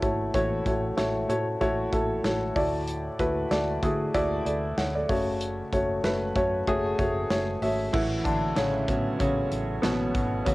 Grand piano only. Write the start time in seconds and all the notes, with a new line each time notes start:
Already playing: A3 E4 F#4 B4 C#5
0.03 A3 E4 F#4 C#5
0.34 A2 E3 A3 E4 F#4 C#5
0.66 A3 E4 F#4 C#5
0.97 A3 E4 F#4 C#5
1.29 A3 E4 F#4 C#5
1.61 A3 E4 F#4 C#5
1.93 A3 E4 F#4 A4
2.24 A3 E4 F#4 C#5
2.56 A2 A3 E4 F#4 D5
3.19 A3 E4 F#4 B4
3.51 A3 E4 F#4 D5
3.83 A3 E4 F#4 G#4
4.14 A3 E4 F#4 D5
4.46 A4 D5
4.78 C#5 F#5
4.95 A4 D5
5.09 C#3 A3 C#4 F#4 C#5
5.73 A3 C#4 F#4 C#5
6.04 A3 C#4 F#4 B4
6.36 A3 C#4 F#4 C#5
6.68 A3 C#4 F#4 G#4
6.99 A3 C#4 F#4 C#5
7.30 A3 C#4 F#4 C#5
7.62 A3 C#4 F#4 E5
7.93 E3 E4
8.24 D3 D4
8.56 C#3 C#4
8.88 C#3 F#3 B3
9.19 C#3 C#4
9.82 B2 B3
10.45 C#3 F#3 B3 C#4